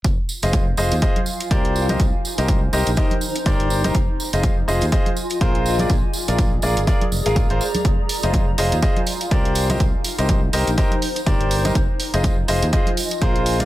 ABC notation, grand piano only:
X:1
M:4/4
L:1/16
Q:"Swing 16ths" 1/4=123
K:Fdor
V:1 name="Grand piano"
z3 [FAce]2 z [FAce] z [FAce] z3 [GBcd]3 [GBce] | z3 [GBce]2 z [GBce] z [GBce] z3 [GBcd]3 [GBce] | z3 [FAce]2 z [FAce] z [FAce] z3 [FABc]3 [FABd] | z3 [FABd]2 z [FABd] z [FABd] z2 [FABf]2 [FABc] z2 |
z3 [FAce]2 z [FAce] z [FAce] z3 [GBcd]3 [GBce] | z3 [GBce]2 z [GBce] z [GBce] z3 [GBcd]3 [GBce] | z3 [FAce]2 z [FAce] z [FAce] z3 [FABc]3 [FABd] |]